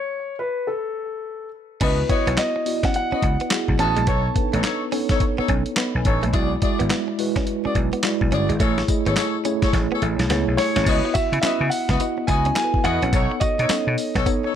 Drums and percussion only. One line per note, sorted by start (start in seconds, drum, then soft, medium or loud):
1.81 kick loud
1.81 closed hi-hat medium
1.81 crash loud
2.09 kick medium
2.09 closed hi-hat medium
2.27 closed hi-hat medium
2.37 snare loud
2.37 clap medium
2.37 closed hi-hat medium
2.66 open hi-hat medium
2.83 kick loud
2.83 snare medium
2.83 closed hi-hat medium
2.94 closed hi-hat medium
3.22 kick medium
3.22 closed hi-hat medium
3.40 closed hi-hat soft
3.51 snare loud
3.51 clap loud
3.51 closed hi-hat medium
3.68 kick loud
3.79 closed hi-hat medium
3.97 closed hi-hat medium
4.07 kick loud
4.07 closed hi-hat medium
4.36 kick medium
4.36 closed hi-hat medium
4.54 closed hi-hat medium
4.64 snare loud
4.64 clap medium
4.64 closed hi-hat medium
4.92 open hi-hat medium
5.09 kick medium
5.09 snare medium
5.09 closed hi-hat medium
5.20 kick medium
5.20 closed hi-hat medium
5.48 kick medium
5.48 closed hi-hat medium
5.66 closed hi-hat soft
5.76 snare loud
5.76 clap loud
5.76 closed hi-hat medium
6.05 kick medium
6.05 closed hi-hat medium
6.23 closed hi-hat medium
6.34 kick loud
6.34 closed hi-hat medium
6.62 kick medium
6.62 closed hi-hat medium
6.80 closed hi-hat medium
6.90 snare loud
6.90 clap medium
6.90 closed hi-hat medium
7.19 open hi-hat medium
7.36 kick medium
7.36 snare medium
7.36 closed hi-hat soft
7.47 closed hi-hat medium
7.75 kick medium
7.75 closed hi-hat medium
7.93 closed hi-hat medium
8.03 snare loud
8.03 clap loud
8.03 closed hi-hat medium
8.21 kick loud
8.32 closed hi-hat medium
8.50 closed hi-hat medium
8.60 kick loud
8.60 closed hi-hat medium
8.60 tambourine medium
8.78 snare medium
8.88 kick loud
8.88 closed hi-hat medium
8.88 tambourine medium
9.06 closed hi-hat medium
9.16 snare loud
9.16 clap medium
9.16 closed hi-hat medium
9.16 tambourine medium
9.45 closed hi-hat medium
9.45 tambourine medium
9.62 kick loud
9.62 snare medium
9.62 closed hi-hat medium
9.73 kick medium
9.73 snare medium
9.73 closed hi-hat medium
10.02 closed hi-hat medium
10.19 snare medium
10.19 closed hi-hat medium
10.30 snare medium
10.30 closed hi-hat medium
10.58 snare medium
10.58 open hi-hat medium
10.76 snare medium
10.76 closed hi-hat medium
10.86 kick loud
10.86 closed hi-hat medium
10.86 crash loud
10.86 tambourine medium
11.15 kick medium
11.15 closed hi-hat medium
11.15 tambourine medium
11.33 closed hi-hat medium
11.43 snare loud
11.43 clap medium
11.43 closed hi-hat medium
11.43 tambourine medium
11.71 open hi-hat medium
11.71 tambourine medium
11.89 kick medium
11.89 snare medium
11.89 closed hi-hat soft
12.00 closed hi-hat medium
12.00 tambourine medium
12.28 kick medium
12.28 closed hi-hat medium
12.28 tambourine medium
12.45 closed hi-hat soft
12.56 snare loud
12.56 clap loud
12.56 closed hi-hat medium
12.56 tambourine loud
12.74 kick loud
12.85 closed hi-hat medium
13.02 closed hi-hat medium
13.13 kick loud
13.13 closed hi-hat medium
13.13 tambourine medium
13.41 kick medium
13.41 closed hi-hat medium
13.41 tambourine medium
13.59 closed hi-hat medium
13.70 snare loud
13.70 clap medium
13.70 closed hi-hat medium
13.70 tambourine medium
13.98 open hi-hat medium
13.98 tambourine medium
14.15 kick medium
14.15 snare medium
14.15 closed hi-hat medium
14.26 kick medium
14.26 closed hi-hat medium
14.26 tambourine medium